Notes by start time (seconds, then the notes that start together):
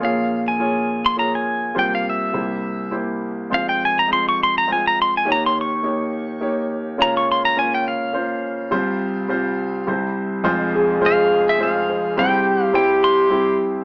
0.00 A#1 A#2 A#3 F4 G#4 C#5
0.05 F5
0.48 G#5
0.59 A#3 F4 G#4 C#5
1.06 C6
1.16 A#3 F4 G#4 C#5 A#5
1.35 G#5
1.74 C2 C3 A#3 F4 G4 C5
1.79 G5
1.95 F5
2.09 E5
2.33 C2 C3 A#3 E4 G4 C5
2.91 A#3 E4 G4 C5
3.50 F1 F2 G#3 C4 F4 C5
3.54 F5
3.69 G5
3.85 G#5
3.99 A#5
4.08 G#3 C4 F4 C5
4.13 C6
4.29 C#6
4.43 C6
4.58 A#5
4.67 G#3 C4 F4 C5
4.72 G#5
4.87 A#5
5.02 C6
5.17 G#5
5.25 D#2 D#3 A#3 D#4 G4 C#5
5.32 A#5
5.46 C6
5.61 C#6
5.83 A#3 D#4 G4 C#5
6.41 A#3 D#4 G4 C#5
6.98 C#2 C#3 A#3 C#4 F4 C#5
7.02 A#5
7.17 C#6
7.32 C6
7.45 A#5
7.57 A#3 C#4 F4 C#5 G#5
7.74 G5
7.88 F5
8.13 A#3 C#4 F4 C5
8.71 C2 C3 G3 C4 F4 C5
9.28 G3 C4 F4 C5
9.87 C2 C3 G3 C4 E4 C5
10.44 F1 F2 G#3 C4 F4 G#4 C5
10.74 G#4
11.01 G#3 C4 F4 C5
11.06 F5
11.49 E5
11.59 G#3 C4 F4 C5
11.63 F5
11.89 C5
12.17 C2 C3 G3 C4 E4 G4 C5 G5
12.64 F5
12.73 G3 C4 E4 C5 G5
13.04 C6
13.30 G3 C4 E4 G4